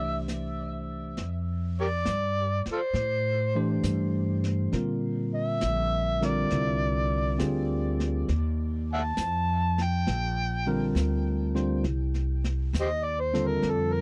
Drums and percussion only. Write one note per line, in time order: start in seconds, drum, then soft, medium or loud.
0.28 snare soft
0.28 hi-hat pedal soft
1.17 brush sweep soft
1.17 snare soft
2.05 snare medium
2.05 hi-hat pedal soft
2.66 snare soft
2.94 brush sweep soft
2.94 snare soft
3.83 snare soft
3.83 hi-hat pedal medium
4.44 snare soft
4.72 brush sweep soft
4.72 snare soft
5.61 snare medium
5.61 hi-hat pedal soft
6.22 snare soft
6.50 brush sweep soft
6.50 snare soft
7.39 snare medium
7.39 hi-hat pedal medium
8.00 snare soft
8.28 brush sweep soft
8.28 snare soft
9.17 snare medium
9.17 hi-hat pedal soft
9.78 snare soft
10.07 brush sweep soft
10.07 snare soft
10.96 snare medium
10.96 hi-hat pedal medium
11.56 snare soft
11.84 brush sweep soft
11.84 snare soft
12.14 snare soft
12.44 snare soft
12.74 snare medium
12.74 hi-hat pedal medium
13.35 snare soft
13.62 brush sweep soft
13.62 snare soft